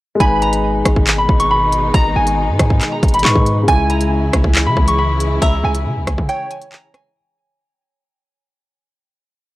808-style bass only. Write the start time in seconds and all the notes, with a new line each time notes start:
0.20 G#1
0.85 G#1
1.29 G#1
1.94 G#1
2.16 G#1
2.48 G#2
2.59 G#2
3.03 G#1
3.25 G#2
3.35 G#2
3.68 C#2
4.33 C#2
4.44 C#2
4.66 C#3
4.77 C#2
5.42 C#2
5.64 C#2
5.85 C#3
5.96 C#2
6.07 C#2
6.18 C#3